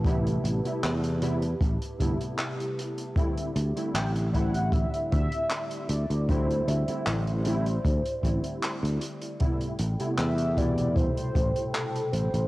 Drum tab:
HH |xxxxxxxxxxxxxxxx|xxxxxxxxxxxxxxxx|xxxxxxxxxxxxxxxx|xxxxxxxxxxxxxxxx|
CP |----x-------x---|----x-------x---|----x-------x---|----x-------x---|
BD |o-------o-o-----|o-----o-o-o-----|o-------o-o-----|o-----o-o-o-----|